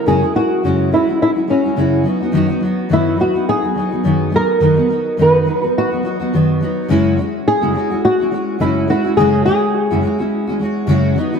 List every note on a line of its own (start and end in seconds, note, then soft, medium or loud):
0.06 0.21 F#2 medium
0.06 0.21 C#3 medium
0.06 0.21 G#3 medium
0.06 0.22 C#4 medium
0.06 0.21 E4 medium
0.06 0.20 F#4 medium
0.06 0.35 G#4 loud
0.21 0.33 G#3 soft
0.21 0.35 C#4 soft
0.21 0.34 E4 soft
0.21 0.34 F#4 soft
0.35 0.63 G#3 soft
0.35 0.63 C#4 soft
0.35 0.64 E4 medium
0.35 0.93 F#4 medium
0.35 0.64 F#4 medium
0.63 0.91 F#2 medium
0.63 0.92 C#3 medium
0.63 0.90 G#3 medium
0.63 0.91 C#4 medium
0.63 0.92 E4 medium
0.63 0.93 F#4 medium
0.91 1.07 G#3 medium
0.91 1.07 C#4 medium
0.91 1.21 E4 medium
0.91 1.07 E4 medium
0.91 1.06 F#4 medium
1.07 1.37 G#3 soft
1.07 1.35 C#4 soft
1.07 1.35 E4 medium
1.07 1.34 F#4 soft
1.22 1.30 E4 medium
1.35 1.46 G#3 soft
1.35 1.47 C#4 soft
1.35 1.48 E4 soft
1.35 1.48 F#4 soft
1.47 1.63 G#3 medium
1.47 1.64 C#4 medium
1.47 2.02 C#4 medium
1.47 1.64 E4 soft
1.47 1.62 F#4 medium
1.63 1.76 G#3 soft
1.63 1.76 C#4 soft
1.63 1.77 E4 soft
1.63 1.76 F#4 medium
1.76 2.05 F#2 medium
1.76 2.05 C#3 medium
1.76 2.03 G#3 medium
1.76 2.04 C#4 medium
1.76 2.06 E4 medium
1.76 2.06 F#4 medium
2.03 2.20 F#3 medium
2.03 2.21 B3 medium
2.03 2.21 D#4 medium
2.03 2.19 F#4 medium
2.20 2.32 F#3 soft
2.20 2.33 B3 soft
2.20 2.34 D#4 soft
2.20 2.33 F#4 soft
2.32 2.48 F#2 medium
2.32 2.49 D#3 medium
2.32 2.49 F#3 medium
2.32 2.48 B3 medium
2.32 2.48 D#4 loud
2.32 2.46 F#4 medium
2.47 2.61 B3 medium
2.47 2.62 D#4 medium
2.47 2.61 F#4 medium
2.51 2.59 F#3 soft
2.61 2.89 F#3 medium
2.61 2.90 B3 medium
2.61 2.90 D#4 medium
2.65 2.90 F#4 medium
2.89 3.18 F#2 medium
2.89 3.19 D#3 medium
2.89 3.16 F#3 medium
2.89 3.17 B3 medium
2.89 3.18 D#4 medium
2.89 3.19 F#4 medium
2.93 3.20 E4 medium
3.17 3.34 F#3 medium
3.17 3.34 B3 medium
3.17 3.34 D#4 medium
3.17 3.32 F#4 medium
3.17 3.49 F#4 medium
3.34 3.64 F#3 soft
3.34 3.62 B3 soft
3.34 3.61 D#4 medium
3.34 3.60 F#4 medium
3.49 4.35 G#4 loud
3.61 3.74 F#3 soft
3.61 3.75 B3 soft
3.61 3.76 D#4 soft
3.61 3.75 F#4 soft
3.75 3.91 F#3 medium
3.75 3.91 B3 medium
3.75 3.90 D#4 medium
3.75 3.89 F#4 medium
3.90 4.03 F#3 soft
3.90 4.04 B3 soft
3.90 4.04 D#4 soft
3.90 4.04 F#4 soft
4.03 4.33 F#2 medium
4.03 4.33 D#3 medium
4.03 4.29 F#3 medium
4.03 4.30 B3 medium
4.03 4.32 D#4 medium
4.03 4.33 F#4 medium
4.30 4.60 F#3 medium
4.30 4.60 B3 medium
4.30 4.61 D#4 medium
4.30 4.61 F#4 medium
4.36 5.16 A#4 medium
4.60 4.77 F#2 medium
4.60 4.77 D#3 medium
4.60 4.77 F#3 medium
4.60 4.76 B3 medium
4.60 4.74 D#4 medium
4.60 4.73 F#4 medium
4.75 4.87 F#3 soft
4.75 4.89 B3 medium
4.75 4.89 D#4 soft
4.75 4.89 F#4 medium
4.88 5.17 F#3 medium
4.88 5.17 B3 soft
4.88 5.18 D#4 medium
4.88 5.19 F#4 medium
5.17 5.46 F#2 medium
5.17 5.47 D#3 medium
5.17 5.44 F#3 medium
5.17 5.45 B3 medium
5.17 5.47 D#4 medium
5.17 5.47 F#4 medium
5.22 5.63 B4 loud
5.45 5.62 F#3 medium
5.45 5.62 B3 medium
5.45 5.61 D#4 medium
5.45 5.60 F#4 medium
5.62 5.93 F#3 soft
5.62 5.91 B3 soft
5.62 5.91 D#4 soft
5.62 5.89 F#4 soft
5.62 5.78 A#4 loud
5.78 6.58 F#4 medium
5.90 6.02 F#3 soft
5.90 6.03 B3 soft
5.90 6.04 D#4 soft
5.90 6.04 F#4 soft
6.03 6.19 F#3 medium
6.03 6.20 B3 medium
6.03 6.19 D#4 medium
6.03 6.18 F#4 medium
6.20 6.32 F#3 soft
6.20 6.33 B3 soft
6.20 6.33 D#4 soft
6.20 6.32 F#4 medium
6.33 6.61 F#2 medium
6.33 6.62 D#3 medium
6.33 6.59 F#3 medium
6.33 6.61 B3 medium
6.33 6.62 D#4 medium
6.33 6.62 F#4 medium
6.61 6.89 F#3 medium
6.61 6.90 B3 medium
6.61 6.90 D#4 medium
6.61 6.90 F#4 medium
6.88 7.17 F#2 medium
6.88 7.18 C#3 loud
6.88 7.16 G#3 loud
6.88 7.17 C#4 loud
6.88 7.18 E4 loud
6.88 7.19 F#4 medium
7.17 7.61 G#3 medium
7.17 7.61 C#4 medium
7.17 7.60 E4 medium
7.17 7.60 F#4 medium
7.48 8.04 G#4 loud
7.61 7.75 F#2 medium
7.61 7.75 C#3 medium
7.61 7.73 G#3 medium
7.61 7.74 C#4 medium
7.61 7.75 E4 medium
7.61 7.75 F#4 medium
7.74 7.90 G#3 medium
7.74 7.91 C#4 medium
7.74 7.90 E4 medium
7.74 7.89 F#4 medium
7.90 8.21 G#3 medium
7.90 8.20 C#4 soft
7.90 8.19 E4 medium
7.90 8.18 F#4 medium
8.05 8.57 F#4 loud
8.20 8.30 G#3 soft
8.20 8.31 C#4 medium
8.20 8.33 E4 soft
8.20 8.32 F#4 medium
8.31 8.59 G#3 medium
8.31 8.59 C#4 medium
8.31 8.60 E4 medium
8.31 8.61 F#4 medium
8.59 8.88 F#2 medium
8.59 8.89 C#3 medium
8.59 8.86 G#3 medium
8.59 8.88 C#4 loud
8.59 8.90 E4 medium
8.59 8.89 E4 medium
8.59 8.90 F#4 medium
8.88 9.04 G#3 medium
8.88 9.04 C#4 medium
8.88 9.03 E4 medium
8.88 9.17 F#4 medium
8.88 9.02 F#4 medium
9.03 9.17 C#4 soft
9.03 9.17 E4 medium
9.03 9.16 F#4 medium
9.07 9.17 G#3 soft
9.17 9.46 F#2 medium
9.17 9.46 C#3 medium
9.17 9.44 G#3 medium
9.17 9.46 C#4 medium
9.17 9.47 E4 medium
9.17 9.47 F#4 loud
9.17 9.44 G#4 loud
9.45 9.90 G#3 medium
9.45 9.90 C#4 medium
9.45 9.90 E4 medium
9.45 9.89 F#4 medium
9.45 11.12 G#4 loud
9.91 10.04 F#2 medium
9.91 10.03 C#3 medium
9.91 10.00 G#3 medium
9.91 10.02 C#4 medium
9.91 10.03 E4 medium
9.91 10.03 F#4 medium
10.01 10.17 G#3 medium
10.01 10.18 C#4 medium
10.01 10.18 E4 medium
10.01 10.17 F#4 medium
10.18 10.48 G#3 medium
10.18 10.48 C#4 medium
10.18 10.47 E4 medium
10.18 10.46 F#4 medium
10.47 10.58 G#3 medium
10.47 10.59 C#4 medium
10.47 10.61 E4 medium
10.47 10.60 F#4 medium
10.59 10.86 G#3 medium
10.59 10.87 C#4 medium
10.59 10.88 E4 medium
10.59 10.88 F#4 medium
10.87 11.16 F#2 medium
10.87 11.16 C#3 loud
10.87 11.15 G#3 medium
10.87 11.17 C#4 medium
10.87 11.17 E4 loud
10.87 11.17 F#4 loud
11.16 11.32 F#3 medium
11.16 11.33 B3 medium
11.16 11.32 D#4 medium
11.16 11.30 F#4 medium
11.31 11.40 F#3 medium
11.31 11.40 B3 medium
11.31 11.40 D#4 medium
11.31 11.40 F#4 medium